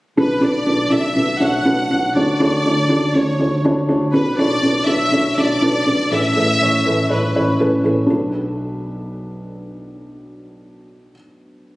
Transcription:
0.17 0.38 B1 medium
0.17 0.88 B2 soft
0.17 0.39 D4 medium
0.17 0.39 F#4 medium
0.17 0.39 A4 medium
0.17 0.39 B4 medium
0.17 0.42 B4 medium
0.41 0.62 B1 medium
0.41 0.63 D4 medium
0.41 0.63 F#4 medium
0.41 0.63 A4 medium
0.41 0.63 B4 medium
0.41 0.93 D5 medium
0.66 0.87 B1 medium
0.66 0.88 D4 medium
0.66 0.88 F#4 medium
0.66 0.88 A4 medium
0.66 0.89 B4 medium
0.90 1.12 B1 medium
0.90 1.12 D4 medium
0.90 1.13 F#4 medium
0.90 1.13 A4 medium
0.90 1.13 D5 medium
0.90 1.42 E5 medium
1.16 1.37 B1 medium
1.16 1.37 D4 medium
1.16 1.38 F#4 medium
1.16 1.37 A4 medium
1.16 1.38 B4 medium
1.40 1.61 B1 medium
1.40 1.62 D4 medium
1.40 1.62 F#4 medium
1.40 1.62 A4 medium
1.40 1.63 C#5 medium
1.40 2.16 F#5 medium
1.65 1.86 B1 medium
1.65 1.87 D4 medium
1.65 1.87 F#4 medium
1.65 1.87 A4 medium
1.65 1.87 B4 medium
1.91 2.15 B1 medium
1.91 2.12 D4 medium
1.91 2.12 F#4 soft
1.91 2.12 A4 medium
1.91 2.13 B4 medium
2.15 2.36 D2 medium
2.15 2.86 D3 medium
2.15 2.37 D4 medium
2.15 2.37 F#4 medium
2.15 2.37 A4 medium
2.15 2.37 C#5 medium
2.15 3.10 D5 medium
2.40 2.60 D2 medium
2.40 2.61 D4 medium
2.40 2.62 F#4 medium
2.40 2.62 A4 medium
2.40 2.62 C#5 medium
2.65 2.85 D2 medium
2.65 2.87 D4 medium
2.65 2.87 F#4 medium
2.65 2.87 A4 medium
2.65 2.87 C#5 medium
2.89 3.10 D2 medium
2.89 3.11 D4 medium
2.89 3.11 F#4 medium
2.89 3.11 A4 medium
2.89 3.12 D5 medium
3.14 3.34 D2 medium
3.14 3.36 D4 medium
3.14 3.36 F#4 medium
3.14 3.37 A4 medium
3.14 3.64 C#5 medium
3.14 3.37 C#5 medium
3.39 3.60 D2 medium
3.39 3.61 D4 medium
3.39 3.61 F#4 medium
3.39 3.61 A4 medium
3.39 3.61 C#5 medium
3.64 3.85 D2 medium
3.64 3.86 D4 medium
3.64 3.86 F#4 medium
3.64 3.86 A4 medium
3.64 3.86 C#5 medium
3.89 4.09 D2 medium
3.89 4.10 D4 medium
3.89 4.10 F#4 medium
3.89 4.11 A4 medium
3.89 4.11 C#5 medium
4.13 4.34 B1 loud
4.13 4.84 B2 medium
4.13 4.35 D4 medium
4.13 4.35 F#4 medium
4.13 4.35 A4 medium
4.13 4.37 B4 medium
4.13 4.36 B4 medium
4.38 4.59 B1 medium
4.38 4.60 D4 medium
4.38 4.60 F#4 medium
4.38 4.60 A4 medium
4.38 4.60 C#5 medium
4.38 4.84 D5 medium
4.63 4.83 B1 medium
4.63 4.84 D4 medium
4.63 4.84 F#4 medium
4.63 4.85 A4 medium
4.63 4.85 B4 medium
4.86 5.08 B1 medium
4.86 5.08 D4 medium
4.86 5.09 F#4 medium
4.86 5.09 A4 medium
4.86 5.09 B4 medium
4.86 5.37 E5 medium
5.12 5.33 B1 medium
5.12 5.34 D4 medium
5.12 5.34 F#4 medium
5.12 5.34 A4 medium
5.12 5.35 C#5 medium
5.37 5.58 B1 medium
5.37 5.59 D4 medium
5.37 5.59 F#4 medium
5.37 5.59 A4 medium
5.37 6.12 D5 medium
5.37 5.60 D5 medium
5.62 5.83 B1 medium
5.62 5.83 D4 medium
5.62 5.84 F#4 medium
5.62 5.84 A4 medium
5.62 5.84 B4 medium
5.86 6.08 B1 medium
5.86 6.08 D4 medium
5.86 6.08 F#4 medium
5.86 6.08 A4 medium
5.86 6.09 B4 medium
6.11 6.32 A1 medium
6.11 6.82 A2 medium
6.11 6.33 C#4 medium
6.11 6.33 E4 medium
6.11 6.33 A4 medium
6.11 6.33 B4 medium
6.11 7.11 E5 medium
6.35 6.57 A1 medium
6.35 6.57 C#4 medium
6.35 6.58 E4 medium
6.35 6.58 A4 medium
6.35 6.58 B4 medium
6.61 6.82 A1 medium
6.61 6.83 C#4 medium
6.61 6.83 E4 medium
6.61 6.83 A4 medium
6.61 6.83 C#5 medium
6.85 7.06 A1 medium
6.85 7.07 C#4 medium
6.85 7.07 E4 medium
6.85 7.08 A4 medium
6.85 7.08 B4 medium
7.09 7.31 A1 medium
7.09 7.31 C#4 medium
7.09 7.32 E4 medium
7.09 7.32 A4 medium
7.09 7.58 B4 medium
7.09 7.32 C#5 medium
7.35 7.56 A1 medium
7.35 7.57 C#4 medium
7.35 7.57 E4 medium
7.35 7.57 A4 medium
7.35 7.57 C#5 medium
7.59 7.81 A1 medium
7.59 7.81 C#4 medium
7.59 7.82 E4 medium
7.59 7.82 A4 medium
7.59 7.82 B4 medium
7.83 8.06 A1 medium
7.83 8.06 C#4 medium
7.83 8.06 E4 medium
7.83 8.06 A4 medium
7.83 8.07 B4 medium
8.06 11.11 B1 medium
8.06 11.13 B1 medium
8.06 11.09 D4 medium
8.06 11.10 F#4 medium
8.06 11.12 A4 medium
8.11 11.13 B4 medium

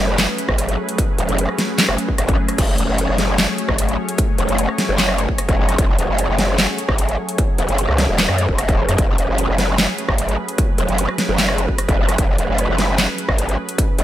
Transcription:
0.00 0.27 F#1 loud
0.00 14.04 F#3 medium
0.00 14.04 A3 medium
0.00 14.04 C#4 medium
0.00 14.04 G#4 medium
0.00 2.56 B4 medium
0.18 snare loud
0.18 clap medium
0.18 closed hi-hat medium
0.38 closed hi-hat medium
0.49 0.77 G#1 loud
0.49 kick medium
0.49 cross-stick medium
0.58 closed hi-hat medium
0.69 closed hi-hat soft
0.89 closed hi-hat medium
0.98 kick loud
0.98 closed hi-hat medium
1.18 1.27 E1 medium
1.18 closed hi-hat medium
1.29 1.47 F#1 loud
1.29 closed hi-hat soft
1.38 closed hi-hat medium
1.49 cross-stick medium
1.58 snare medium
1.58 closed hi-hat medium
1.78 snare loud
1.78 clap medium
1.78 closed hi-hat medium
1.89 1.97 F#1 loud
1.89 cross-stick medium
1.98 closed hi-hat medium
2.09 kick medium
2.18 2.37 G#1 medium
2.18 cross-stick medium
2.18 closed hi-hat medium
2.29 kick loud
2.29 closed hi-hat soft
2.49 cross-stick medium
2.49 closed hi-hat medium
2.58 2.77 F#1 loud
2.58 8.96 C#5 medium
2.58 kick loud
2.58 closed hi-hat medium
2.58 crash medium
2.78 2.87 E1 loud
2.78 closed hi-hat medium
2.88 3.07 F#1 medium
2.98 closed hi-hat medium
3.08 3.47 F#1 loud
3.18 snare medium
3.18 closed hi-hat medium
3.38 snare loud
3.38 clap loud
3.38 closed hi-hat medium
3.58 closed hi-hat medium
3.69 3.97 G#1 loud
3.69 kick medium
3.69 cross-stick medium
3.78 closed hi-hat medium
3.89 closed hi-hat soft
4.09 closed hi-hat medium
4.18 kick loud
4.18 closed hi-hat medium
4.38 4.47 E1 loud
4.38 closed hi-hat medium
4.49 4.67 F#1 medium
4.49 closed hi-hat soft
4.58 closed hi-hat medium
4.69 cross-stick medium
4.78 snare medium
4.78 closed hi-hat medium
4.89 5.27 F#1 loud
4.98 snare loud
4.98 clap medium
4.98 closed hi-hat medium
5.09 cross-stick medium
5.18 closed hi-hat medium
5.29 kick medium
5.38 cross-stick medium
5.38 closed hi-hat medium
5.49 5.77 F#1 loud
5.49 kick loud
5.49 closed hi-hat soft
5.69 cross-stick medium
5.69 closed hi-hat medium
5.78 5.97 F#1 loud
5.78 kick loud
5.78 closed hi-hat medium
5.98 6.07 E1 loud
5.98 closed hi-hat medium
6.09 6.27 F#1 medium
6.18 closed hi-hat medium
6.29 6.67 F#1 loud
6.38 snare medium
6.38 closed hi-hat medium
6.58 snare loud
6.58 clap medium
6.58 closed hi-hat medium
6.78 closed hi-hat medium
6.89 7.17 G#1 loud
6.89 kick medium
6.89 cross-stick medium
6.98 closed hi-hat medium
7.09 closed hi-hat soft
7.29 closed hi-hat medium
7.38 kick loud
7.38 closed hi-hat medium
7.58 7.67 E1 medium
7.58 closed hi-hat medium
7.69 7.87 F#1 loud
7.69 closed hi-hat soft
7.78 closed hi-hat medium
7.89 8.07 C#2 loud
7.89 cross-stick medium
7.98 snare medium
7.98 closed hi-hat medium
8.08 8.27 E1 loud
8.18 snare loud
8.18 clap medium
8.18 closed hi-hat medium
8.28 8.47 F#2 loud
8.28 cross-stick medium
8.38 closed hi-hat medium
8.49 8.87 E1 loud
8.49 kick medium
8.58 cross-stick medium
8.58 closed hi-hat medium
8.69 kick loud
8.69 closed hi-hat soft
8.88 8.97 F#2 medium
8.88 cross-stick medium
8.88 closed hi-hat medium
8.98 9.17 F#1 medium
8.98 14.04 B4 medium
8.98 kick loud
8.98 closed hi-hat medium
9.18 9.27 E1 loud
9.18 closed hi-hat medium
9.28 9.47 F#1 loud
9.38 closed hi-hat medium
9.48 9.87 F#1 loud
9.58 snare medium
9.58 closed hi-hat soft
9.78 snare loud
9.78 clap medium
9.78 closed hi-hat medium
9.98 closed hi-hat soft
10.09 10.37 G#1 medium
10.09 kick medium
10.09 cross-stick medium
10.18 closed hi-hat medium
10.29 closed hi-hat soft
10.48 closed hi-hat medium
10.58 kick loud
10.58 closed hi-hat medium
10.78 10.87 E1 loud
10.78 closed hi-hat medium
10.88 11.07 F#1 loud
10.88 closed hi-hat soft
10.98 closed hi-hat medium
11.09 cross-stick medium
11.18 snare medium
11.18 closed hi-hat medium
11.28 11.67 F#1 loud
11.38 snare loud
11.38 clap medium
11.38 closed hi-hat medium
11.49 cross-stick medium
11.58 closed hi-hat medium
11.69 kick medium
11.78 cross-stick medium
11.78 closed hi-hat medium
11.89 12.17 F#1 loud
11.89 kick loud
11.89 closed hi-hat soft
12.09 cross-stick medium
12.09 closed hi-hat medium
12.18 12.37 F#1 loud
12.18 kick loud
12.18 closed hi-hat medium
12.38 12.47 E1 loud
12.38 closed hi-hat medium
12.49 12.67 F#1 loud
12.58 closed hi-hat medium
12.69 13.07 F#1 loud
12.78 snare medium
12.78 closed hi-hat medium
12.98 snare loud
12.98 clap medium
12.98 closed hi-hat medium
13.18 closed hi-hat medium
13.29 13.57 G#1 loud
13.29 kick medium
13.29 cross-stick medium
13.38 closed hi-hat medium
13.49 closed hi-hat soft
13.69 closed hi-hat medium
13.78 kick loud
13.78 closed hi-hat medium
13.98 14.04 E1 loud
13.98 closed hi-hat medium

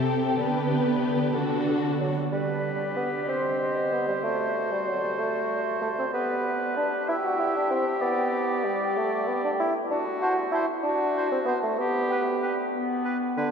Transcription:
0.00 0.34 C3 soft
0.00 0.36 C4 soft
0.00 0.37 G4 soft
0.00 0.37 A4 soft
0.05 0.37 G5 soft
0.37 1.34 D3 soft
0.37 1.36 B3 soft
0.37 1.34 G4 soft
0.37 1.36 B4 soft
0.37 1.33 D5 soft
1.35 2.11 D3 soft
1.35 2.12 D4 soft
1.35 2.13 F#4 soft
1.35 2.12 A4 soft
2.00 2.15 F#3 soft
2.32 2.95 G3 medium
2.32 4.20 G4 soft
2.32 3.30 B4 soft
2.32 3.25 D5 soft
2.96 3.11 B3 medium
3.28 3.93 C4 medium
3.28 6.13 C5 soft
3.28 4.23 D#5 soft
3.92 4.08 B3 medium
4.08 4.15 G3 soft
4.23 4.73 A3 medium
4.23 6.09 F#4 soft
4.23 7.04 D5 soft
4.71 4.88 G3 medium
4.87 5.03 F#3 soft
5.03 5.20 G3 medium
5.18 5.81 A3 medium
5.81 5.89 A3 medium
5.98 6.05 C4 medium
6.13 6.75 B3 medium
6.13 9.73 G4 medium
6.13 7.10 B4 soft
6.77 6.91 D4 medium
7.08 7.15 E4 medium
7.08 8.03 E5 soft
7.08 9.91 G5 medium
7.24 7.41 F#4 medium
7.39 7.55 E4 medium
7.56 7.70 D4 medium
7.70 7.85 C4 medium
8.01 8.66 B3 medium
8.01 9.91 D5 soft
8.64 8.98 G3 medium
8.97 9.29 A3 medium
9.27 9.43 B3 medium
9.44 9.51 D4 medium
9.60 9.74 E4 medium
9.90 10.05 D4 medium
9.90 10.69 F#4 medium
10.21 10.36 F#4 medium
10.21 10.33 C5 soft
10.21 10.28 A5 soft
10.52 10.66 E4 medium
10.52 10.65 C5 soft
10.52 10.59 A5 soft
10.83 11.30 D4 medium
10.83 11.64 F#4 medium
11.16 11.28 C5 soft
11.16 11.22 A5 soft
11.32 11.39 C4 medium
11.45 11.53 B3 medium
11.45 11.59 C5 soft
11.45 11.52 A5 soft
11.63 11.80 A3 medium
11.78 12.73 B3 medium
11.78 12.58 G4 medium
12.09 12.23 B4 soft
12.09 12.15 G5 soft
12.42 12.54 B4 soft
12.42 12.48 G5 soft
12.73 13.51 B3 medium
13.05 13.17 B4 soft
13.05 13.11 G5 soft
13.37 13.51 D3 medium
13.37 13.49 B4 soft
13.37 13.43 G5 soft

